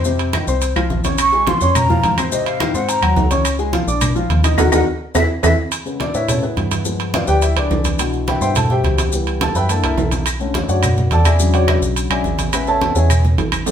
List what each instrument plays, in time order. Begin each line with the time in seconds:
Already playing: fm bass F2
0.04 upright piano C3 C4 C5, high conga, maracas
0.19 high conga, high timbale, maracas
0.33 upright piano D#3 D#4 D#5, high conga, high timbale, claves, maracas
0.47 fm bass C2, upright piano C4 C5 C6, high conga, maracas
0.61 high conga, high timbale, maracas
0.76 fm bass C2, upright piano F3 F4 F5, high conga, high timbale, claves, maracas
0.90 fm bass A#1, high conga, maracas
1.04 upright piano C#4 C#5 C#6, high conga, high timbale, maracas
1.18 flute C#6, high conga, high timbale, claves, maracas
1.32 upright piano G#3 G#4 G#5, high conga, maracas
1.47 upright piano F3 F4 F5, flute C6, high conga, high timbale, maracas
1.61 fm bass F2, upright piano C#4 C#5 C#6, high conga, maracas
1.75 flute A#5, high conga, low conga, high timbale, claves, maracas
1.89 upright piano F3 F4 F5, high conga, low conga, maracas
2.03 fm bass G#2, high conga, high timbale, maracas
2.18 upright piano C4 C5 C6, high conga, high timbale, claves, maracas
2.32 upright piano C3 C4 C5, flute D#5, high conga, maracas
2.46 flute F5, high conga, high timbale, maracas
2.60 upright piano D#3 D#4 D#5, high conga, high timbale, claves, maracas
2.74 fm bass G#2, upright piano C4 C5 C6, flute F#5, high conga, maracas
2.88 flute A#5, high conga, high timbale, maracas
3.02 fm bass D#2, upright piano F#3 F#4 F#5, high timbale, claves, maracas
3.16 fm bass C#2, high conga, low timbale, maracas
3.31 upright piano C#4 C#5 C#6, high conga, high timbale, maracas
3.45 high conga, high timbale, claves, maracas
3.59 upright piano G#3 G#4 G#5, high conga, maracas
3.72 upright piano F3 F4 F5, high conga, high timbale, maracas
3.87 fm bass A#1, upright piano D4 D5 D6, high conga, maracas
4.01 high conga, low conga, high timbale, claves, maracas
4.15 upright piano F3 F4 F5, high conga, maracas
4.30 fm bass D#2, high conga, high timbale, maracas
4.44 upright piano D#4 D#5 D#6, high conga, high timbale, claves, maracas
4.58 fm bass D#2, upright piano D#4 F#4 A#4, flute F#5, high conga, high timbale, claves, maracas
4.72 fm bass D#2, upright piano D#4 F#4 A#4, flute F#5, high conga, high timbale, claves, maracas
5.14 fm bass E2, upright piano E4 G#4 B4, flute E5, high conga, high timbale, claves, maracas
5.43 fm bass E2, upright piano E4 G#4 B4, flute E5, high conga, high timbale, claves, maracas
5.72 high conga, high timbale, maracas
5.85 upright piano C#3 G#3 B3, high conga, maracas
6.00 upright piano D4 D5, high conga, high timbale, maracas
6.14 fm bass A2, upright piano E4 B4 C#5 E5, high conga, maracas
6.28 upright piano C#3 G#3 B3 C#4 G#4 A4 C#5, high conga, low conga, high timbale, maracas
6.43 upright piano B3 E4 G#4 B4, high conga, maracas
6.57 fm bass G2, high conga, high timbale, maracas
6.71 high conga, high timbale, maracas
6.85 upright piano F3 G#3 B3, high conga, maracas
7.00 high conga, high timbale, maracas
7.14 upright piano F4 B4 D5 F5, high conga, high timbale, maracas
7.27 fm bass D2, upright piano G4 B4 D5 G5, high conga, maracas
7.42 upright piano E4 E5, high conga, high timbale, maracas
7.56 fm bass C#2, upright piano D4 G#4 B4 D5, high conga, high timbale, maracas
7.71 fm bass C2, high conga, low timbale, maracas
7.84 high conga, high timbale, maracas
7.98 upright piano B2 D3 E3, high conga, high timbale, maracas
8.13 high conga, maracas
8.27 upright piano B4 E5 G5 B5, high conga, high timbale, maracas
8.41 fm bass G2, upright piano D3 E3 B3 C5 E5 G5 C6, high conga, maracas
8.55 upright piano A4 A5, high conga, low conga, high timbale, maracas
8.70 upright piano G4 C5 E5 G5, high conga, low conga, maracas
8.84 fm bass C#2, high conga, high timbale, maracas
8.98 high conga, high timbale, maracas
9.12 upright piano E3 G3 B3, high conga, maracas
9.27 high conga, high timbale, maracas
9.41 upright piano A4 A5, high conga, high timbale, maracas
9.55 fm bass F#2, upright piano B4 E5 G5 B5, high conga, maracas
9.69 upright piano E3 A#3 D4 A4 E5 F#5 A5, high timbale, maracas
9.83 fm bass C2, upright piano E4 A4 A#4 E5, high conga, high timbale, maracas
9.97 fm bass B1, high conga, low timbale, maracas
10.11 high conga, high timbale, maracas
10.26 high conga, high timbale, claves, maracas
10.40 upright piano D3 A3 C#4, high conga, maracas
10.54 high conga, high timbale, maracas
10.68 fm bass F#2, upright piano F#4 C#5 D5 F#5, high conga, maracas
10.83 high conga, low conga, high timbale, claves, maracas
10.97 high conga, low conga, maracas
11.11 fm bass E2, upright piano A4 D5 F#5 A5, high conga, high timbale, maracas
11.25 upright piano G#4 D5 E5 G#5, high conga, high timbale, claves, maracas
11.39 upright piano C#3 D3 F#3 G#3, high conga, maracas
11.54 upright piano F#4 C#5 D5 F#5, high conga, high timbale, maracas
11.68 high conga, high timbale, claves, maracas
11.82 fm bass B1, high conga, maracas
11.96 high conga, high timbale, maracas
12.10 fm bass B1, upright piano D3 F#3 G#3 C#4 G#4 D5 E5 G#5, high conga, high timbale, claves, maracas
12.24 fm bass A1, high conga, maracas
12.38 high conga, high timbale, maracas
12.53 upright piano C#3 G#3 B3 B4 E5 G#5 B5, high conga, high timbale, claves, maracas
12.67 upright piano A4 C#5 E5 A5, high conga, maracas
12.81 high conga, high timbale, maracas
12.95 fm bass E2, upright piano C#3 G#3 B3 G#4 C#5 E5 G#5, high conga, maracas
13.10 high conga, low conga, high timbale, claves, maracas
13.25 high conga, low conga, maracas
13.38 fm bass G#1, high conga, high timbale, low timbale, maracas
13.52 high conga, high timbale, claves, maracas
13.66 upright piano E3 F#3 C4, high timbale, maracas